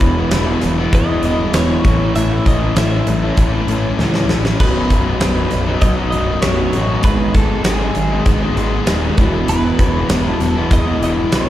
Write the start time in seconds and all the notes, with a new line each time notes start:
Already playing: E2 B2 E3 G#3 B3 E4 B4
0.00 E1 E2 B2, kick, closed hi-hat
0.16 E3 G#3 B3 E4
0.30 E1 E2 B2 E3 G#3 B3, snare, closed hi-hat
0.34 E4
0.46 E3 G#3 B3 E4
0.61 E1 E2 B2, muted distorted electric guitar stroke, snare, closed hi-hat
0.78 E3 G#3 B3 E4
0.93 E2 B2 D#5, kick, closed hi-hat
1.08 E3 G#3 B3 E4
1.23 E1 E2 B2 E3 G#3 B3 E4 D#5, closed hi-hat
1.38 muted distorted electric guitar stroke
1.53 E1 E2 B2 E3 G#3 B3 E4 C#5, snare, closed hi-hat
1.69 E3 G#3 B3 E4
1.84 A1 A2 E3 A3 C#4 E4 A4, kick, closed hi-hat
1.99 A3 C#4 E4 A4
2.14 A1 A2 E3 A3 C#4 E4 A4 E5, closed hi-hat
2.29 A3 C#4 E4 A4
2.45 A1 A2 E3 D#5, kick, closed hi-hat
2.61 A3 C#4 E4 A4
2.76 A1 A2 E3 A3 C#4 E4 A4 E5, snare, closed hi-hat
2.91 A3 C#4 E4 A4
3.07 A1 A2 E3, muted distorted electric guitar stroke, closed hi-hat
3.22 A3 C#4 E4 A4
3.37 A1 A2 E3, kick, closed hi-hat
3.54 A3 C#4 E4 A4
3.68 A1 A2 E3 A3 C#4 E4, closed hi-hat
3.72 A4
3.84 muted distorted electric guitar stroke
3.99 C#2 A2 E3 A3 C#4 E4, snare
4.03 A4
4.14 C#4 E4 A4, snare
4.18 A3
4.29 A1 A3 C#4 E4 A4, snare
4.45 A3 C#4 E4 A4, snare
4.60 B0 B1 F#2 B2 F#3 D#4 B4, kick, splash, crash
4.75 B2 F#3 D#4
4.90 B0, kick, closed hi-hat
5.05 B2 F#3 D#4
5.20 B0 B1 F#2 B2 F#3 D#4, snare, closed hi-hat
5.36 B2 F#3 D#4
5.51 B0 B1 F#2, muted distorted electric guitar stroke, snare, closed hi-hat
5.66 B2 F#3 D#4
5.81 B1 F#2 D#5, kick, closed hi-hat
5.97 F#3 D#4
6.01 B2
6.10 B0 B1 F#2 B2 D#5, closed hi-hat
6.15 F#3 D#4
6.27 muted distorted electric guitar stroke
6.42 B0 B1 F#2 B2 F#3 C#5, snare, closed hi-hat
6.47 D#4
6.57 B2 F#3 D#4
6.73 A1 B1 F#2 B2 F#3, closed hi-hat
6.77 D#4
6.87 B2 F#3 D#4
7.02 G#1 G#2 D#3 G#3 B3 D#4 G#4 B4, kick, closed hi-hat
7.19 G#3 B3 D#4 G#4
7.34 G#1 G#2 D#3 A4, kick, closed hi-hat
7.49 G#3 B3 D#4 G#4
7.64 G#1 G#2 D#3 G#3 B3 D#4 G#4, snare, closed hi-hat
7.69 G#4
7.81 G#3 B3 D#4 G#4
7.95 G#1 G#2 D#3, muted distorted electric guitar stroke, closed hi-hat
8.10 G#3 B3 D#4 G#4
8.26 G#1 G#2 D#3, kick, closed hi-hat
8.42 G#3 B3 D#4 G#4
8.56 G#1 G#2 D#3 G#3 B3 D#4 G#4, closed hi-hat
8.74 muted distorted electric guitar stroke
8.87 D#1 G#2 D#3 G#3 B3 D#4 G#4, snare, closed hi-hat
9.02 G#3 B3 D#4 G#4
9.17 E1 E2 B2 E3 G#3 B3 E4, kick, closed hi-hat
9.32 E3 G#3 B3 E4
9.48 E1 E2 B2 E3 G#3 B3 E4 B4, closed hi-hat
9.62 G#3 B3 E4
9.67 E3
9.79 E1 E2, kick, closed hi-hat
9.94 E3 G#3 B3 E4
10.08 E1 E2 B2 E3 G#3 B3 E4, snare, closed hi-hat
10.24 E3 G#3 B3 E4
10.30 A4
10.40 E1 E2 B2, muted distorted electric guitar stroke, snare, closed hi-hat
10.55 E3 G#3 B3 E4
10.71 E2 B2 D#5, kick, closed hi-hat
10.85 E3 G#3 B3 E4
11.00 E1 E2 B2 E3 G#3 B3 E4 D#5, closed hi-hat
11.18 muted distorted electric guitar stroke
11.31 B1 E2 B2 E3 G#3 B3 E4, snare, closed hi-hat
11.36 C#5